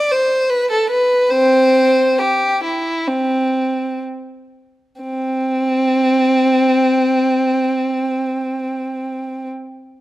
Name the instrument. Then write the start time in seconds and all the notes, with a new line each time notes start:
violin
0.11 C5
0.50 B4
0.71 A4
0.90 B4
1.31 C4 C5
2.19 G4
2.64 E4
3.08 C4
5.02 C4